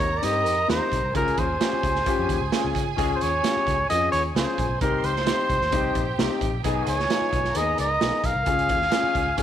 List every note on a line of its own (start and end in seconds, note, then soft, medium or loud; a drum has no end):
0.00 0.18 D#2 medium
0.00 1.11 A#4 medium
0.00 0.19 C#5 loud
0.00 1.11 A#5 medium
0.00 kick medium
0.00 closed hi-hat medium
0.17 0.26 D5 medium
0.22 0.46 G2 medium
0.22 0.52 C4 medium
0.22 0.52 D#4 medium
0.22 0.52 G4 medium
0.22 0.69 D#5 loud
0.22 closed hi-hat medium
0.46 0.64 F2 medium
0.46 closed hi-hat medium
0.68 0.78 D#2 medium
0.68 0.97 C4 medium
0.68 0.98 D#4 medium
0.68 0.98 G4 medium
0.68 1.13 C5 medium
0.68 snare loud
0.68 closed hi-hat medium
0.91 1.00 B1 medium
0.91 kick medium
0.91 closed hi-hat medium
1.03 1.12 C2 medium
1.14 1.32 C#2 medium
1.14 1.43 C#4 medium
1.14 1.44 F4 medium
1.14 4.31 G#4 medium
1.14 1.44 G#4 medium
1.14 1.41 A#4 medium
1.14 4.31 G#5 loud
1.14 kick medium
1.14 closed hi-hat medium
1.28 closed hi-hat soft
1.37 1.55 D#2 medium
1.37 2.76 C5 medium
1.37 kick medium
1.37 closed hi-hat medium
1.59 1.89 C#4 medium
1.59 1.89 F4 medium
1.59 1.90 G4 medium
1.59 snare loud
1.59 closed hi-hat medium
1.73 muted picked electric bass stroke soft
1.83 2.01 C#2 medium
1.83 kick medium
1.83 closed hi-hat medium
1.95 snare soft
2.06 2.35 C#4 medium
2.06 2.36 F4 medium
2.06 2.36 G4 loud
2.06 kick loud
2.06 closed hi-hat medium
2.19 2.28 F2 medium
2.29 2.38 D#2 medium
2.29 kick medium
2.29 closed hi-hat medium
2.41 2.50 C#2 medium
2.52 2.81 C#4 medium
2.52 2.81 F4 medium
2.52 2.82 G#4 medium
2.52 muted picked electric bass stroke soft
2.52 snare loud
2.52 closed hi-hat medium
2.65 2.73 C#2 medium
2.75 2.93 C#3 medium
2.75 kick medium
2.75 closed hi-hat medium
2.96 3.16 C#2 loud
2.96 3.13 G#3 loud
2.96 3.26 C#4 medium
2.96 3.13 C#4 loud
2.96 3.27 F4 medium
2.96 3.13 F4 medium
2.96 3.13 G#4 loud
2.96 3.27 G#4 medium
2.96 kick medium
2.96 closed hi-hat medium
3.16 3.24 C5 medium
3.21 3.39 D#2 medium
3.21 3.89 C#5 loud
3.21 closed hi-hat medium
3.43 3.72 C#4 medium
3.43 3.72 F4 medium
3.43 3.73 G4 medium
3.43 snare loud
3.43 closed hi-hat loud
3.57 muted picked electric bass stroke soft
3.67 3.84 C#2 medium
3.67 kick medium
3.67 closed hi-hat medium
3.89 4.08 F2 medium
3.89 4.18 C#4 medium
3.89 4.19 F4 medium
3.89 4.19 G#4 medium
3.89 4.11 D#5 loud
3.89 closed hi-hat medium
4.12 4.30 D#2 medium
4.12 4.23 C#5 loud
4.12 closed hi-hat medium
4.35 4.44 C#2 medium
4.35 4.64 C#4 medium
4.35 4.65 F4 medium
4.35 4.80 G#4 medium
4.35 4.65 G#4 medium
4.35 4.79 C5 medium
4.35 4.80 G#5 medium
4.35 snare loud
4.35 closed hi-hat medium
4.58 4.67 A#1 medium
4.58 kick medium
4.58 closed hi-hat medium
4.69 4.78 B1 medium
4.81 4.99 C2 loud
4.81 5.10 C4 medium
4.81 5.11 D#4 medium
4.81 5.11 G4 medium
4.81 5.07 A#4 medium
4.81 5.71 C5 medium
4.81 5.71 C6 medium
4.81 kick medium
4.81 closed hi-hat medium
5.03 5.30 C#2 medium
5.03 6.42 C5 loud
5.03 closed hi-hat medium
5.16 snare soft
5.27 5.56 C4 medium
5.27 5.56 D#4 medium
5.27 5.57 G4 medium
5.27 snare loud
5.27 closed hi-hat medium
5.50 5.59 C2 medium
5.50 kick medium
5.50 closed hi-hat medium
5.61 5.70 D#2 medium
5.61 snare soft
5.72 5.90 C2 medium
5.72 6.01 C4 medium
5.72 6.02 D#4 medium
5.72 6.62 G4 medium
5.72 6.02 G4 medium
5.72 6.63 G5 medium
5.72 kick loud
5.72 closed hi-hat medium
5.95 6.13 A#1 medium
5.95 kick medium
5.95 closed hi-hat medium
6.18 6.27 C2 medium
6.18 6.47 C4 medium
6.18 6.48 D#4 medium
6.18 6.48 G4 medium
6.18 snare loud
6.18 closed hi-hat medium
6.41 6.50 A1 medium
6.41 kick medium
6.41 closed hi-hat medium
6.53 6.62 A#1 loud
6.64 6.82 B1 loud
6.64 6.93 G#3 medium
6.64 6.93 B3 medium
6.64 6.94 B3 medium
6.64 6.94 D#4 medium
6.64 6.93 D#4 medium
6.64 7.54 G#4 medium
6.64 6.93 G#4 loud
6.64 6.94 G#4 medium
6.64 7.54 G#5 loud
6.64 kick medium
6.64 closed hi-hat medium
6.87 7.05 C#2 medium
6.87 7.59 C#5 medium
6.87 closed hi-hat medium
6.99 snare soft
7.10 7.39 B3 medium
7.10 7.39 D#4 medium
7.10 7.39 F4 medium
7.10 snare loud
7.10 closed hi-hat medium
7.21 muted picked electric bass stroke soft
7.33 7.50 B1 medium
7.33 kick medium
7.33 closed hi-hat medium
7.45 snare soft
7.55 7.73 D#2 loud
7.55 7.84 B3 medium
7.55 7.84 D#4 medium
7.55 7.85 G#4 medium
7.55 8.45 A#4 medium
7.55 7.79 D#5 medium
7.55 8.46 A#5 medium
7.55 closed hi-hat medium
7.78 7.96 C#2 medium
7.78 8.27 D#5 medium
7.78 closed hi-hat medium
8.00 8.10 B1 medium
8.00 8.30 B3 medium
8.00 8.30 D#4 medium
8.00 8.31 G#4 medium
8.00 snare loud
8.00 closed hi-hat medium
8.24 8.33 B1 medium
8.24 9.43 F5 loud
8.24 kick medium
8.24 closed hi-hat medium
8.35 8.44 C2 medium
8.46 8.70 C#2 medium
8.46 8.75 C#4 medium
8.46 8.76 F4 medium
8.46 9.43 G#4 medium
8.46 8.76 G#4 medium
8.46 9.43 G#5 loud
8.46 kick medium
8.46 closed hi-hat medium
8.59 closed hi-hat soft
8.69 8.88 D#2 medium
8.69 kick medium
8.69 closed hi-hat medium
8.82 snare soft
8.91 9.21 C#4 medium
8.91 9.21 F4 medium
8.91 9.22 G#4 medium
8.91 snare loud
8.91 closed hi-hat medium
9.03 muted picked electric bass stroke soft
9.15 9.33 C#2 medium
9.15 kick medium
9.15 closed hi-hat medium
9.37 9.43 F2 medium
9.37 9.43 C#4 medium
9.37 9.43 F4 medium
9.37 9.43 G#4 medium
9.37 kick loud
9.37 closed hi-hat medium